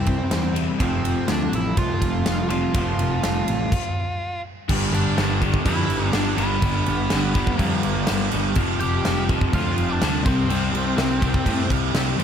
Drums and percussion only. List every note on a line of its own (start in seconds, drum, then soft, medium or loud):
0.06 kick medium
0.06 ride medium
0.31 snare loud
0.31 ride medium
0.56 ride medium
0.80 kick loud
0.80 ride medium
1.05 ride medium
1.28 snare loud
1.28 ride medium
1.53 ride medium
1.77 kick loud
1.77 ride medium
2.02 kick medium
2.02 ride medium
2.26 snare loud
2.26 ride medium
2.50 ride medium
2.74 kick loud
2.74 ride medium
2.99 ride medium
3.23 snare loud
3.23 ride medium
3.48 ride medium
3.72 kick loud
3.72 crash medium
4.69 kick loud
4.69 crash loud
4.69 crash medium
4.94 crash medium
5.18 snare loud
5.18 crash medium
5.42 kick medium
5.42 crash medium
5.54 kick medium
5.66 kick medium
5.66 crash medium
5.90 crash medium
6.13 snare loud
6.13 crash medium
6.38 crash medium
6.62 kick loud
6.62 crash medium
6.86 crash medium
7.10 snare loud
7.10 crash medium
7.35 kick medium
7.35 crash medium
7.47 kick medium
7.59 kick medium
7.59 crash medium
7.83 crash medium
8.07 snare loud
8.07 crash medium
8.32 crash medium
8.55 kick loud
8.55 crash medium
8.80 crash medium
9.05 snare loud
9.05 crash medium
9.29 kick medium
9.29 crash medium
9.41 kick medium
9.53 kick loud
9.53 crash medium
9.78 crash medium
10.02 snare loud
10.02 crash medium
10.26 kick loud
10.26 crash medium
10.50 crash medium
10.75 crash medium
10.98 snare loud
10.98 crash medium
11.22 kick medium
11.22 crash medium
11.34 kick medium
11.46 kick medium
11.46 crash medium
11.70 kick medium
11.70 crash medium
11.95 snare loud
11.95 crash medium
12.20 crash medium